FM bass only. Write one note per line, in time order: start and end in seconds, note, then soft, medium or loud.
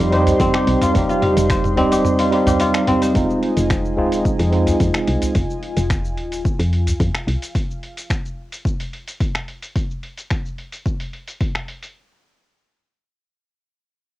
0.00 0.32 F2 medium
0.40 0.49 F2 loud
0.67 0.76 C2 medium
0.95 1.04 F1 loud
1.37 1.79 F1 loud
1.77 2.05 D#1 loud
3.15 3.24 F1 loud
3.57 3.99 F1 medium
3.98 4.31 D#1 medium
4.39 4.73 F2 medium
4.80 4.89 F2 loud
5.08 5.17 C2 medium
5.35 5.44 F1 loud
5.77 6.19 F1 loud
6.17 6.51 D#1 medium
6.59 6.93 F2 medium
7.00 7.09 F2 loud
7.27 7.37 C2 medium